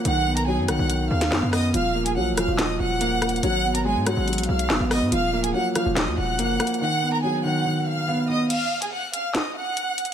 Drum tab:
CC |------------------------------------------------------------------------------------------------|------------------------------------------------------------------------------------------------|------------------------------------------------------------------------------------------------|------------------------------------------------------------------------------------------------|
HH |x-----------------x-----------------x-----------x-----------------x-----------------o-----------|x-----------------x-----------------x-----------x-----------------------x-----------x---x---x---|x-----------------x-----------------x-----------x--x--x--x--------x-----------------o-----------|x-----------------x-----------------x-----------x-----------------------x-----------x---x---x---|
CP |------------------------------------------------------------------------x-----------------------|------------------------------------------------x-----------------------------------------------|------------------------------------------------------------------------x-----------------------|------------------------------------------------x-----------------------------------------------|
SD |------------------------------------r-----------------------------o-----o-----------r-----------|------------------------------------r-----------o-----------------------------------r-----------|------------------------------------r-----------------------------------o-----------r-----------|------------------------------------r-----------o-----------------------------------r-----------|

CC |------------------------------------------------------------------------------------------------|x-----------------------------------------------------------------------------------------------|
HH |------------------------------------------------------------------------------------------------|x-----------------x-----------------x-----------x-----------------------x-----------x---x-------|
CP |------------------------------------------------------------------------------------------------|------------------------------------------------x-----------------------------------------------|
SD |------------------------------------------------------------------------------------------------|------------------------------------------------o-----------------------------------------------|